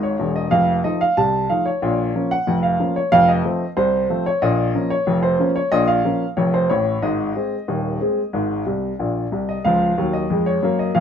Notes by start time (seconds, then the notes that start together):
Already playing: G#1 G#2
0.03 C#5
0.19 E1 E2
0.36 D#5
0.51 F1 F2 F5
0.84 F3 A3 D#4 D#5
1.01 F5
1.17 C2 C3 A5
1.50 F3 A3 D#4 F5
1.66 C#5
1.82 A#1 A#2
2.15 F3 A#3 C#4
2.31 F#5
2.47 F1 F2
2.63 F5
2.80 F3 A#3 C#4
2.96 C#5
3.12 F1 F2 F5
3.29 D#5
3.45 F3 A3 C4
3.77 C2 C3 C5
4.10 F3 A3 C4
4.26 C#5
4.42 A#1 A#2 D#5
4.75 F3 A#3 C#4
4.90 C#5
5.07 F1 F2
5.23 C5
5.39 F3 A#3 C#4
5.56 C#5
5.72 A#1 A#2 D#5
5.88 F5
6.04 F3 A#3 C#4
6.37 F1 F2 C#5
6.54 C5
6.70 A1 A2 C#5
7.02 G#1 G#2 D#5
7.36 G#3 C4 G#4
7.68 D#1 D#2
8.01 G#3 C4 G#4
8.33 G#1 G#2
8.66 C2 C3
8.99 A#1 A#2
9.32 C2 C3
9.49 D#5
9.65 C#2 F3 F5
9.98 D#2 F#3
10.13 D#5
10.30 F2 G#3
10.46 C#5
10.63 F#2 A#3
10.79 D#5
10.95 F1 F2 F5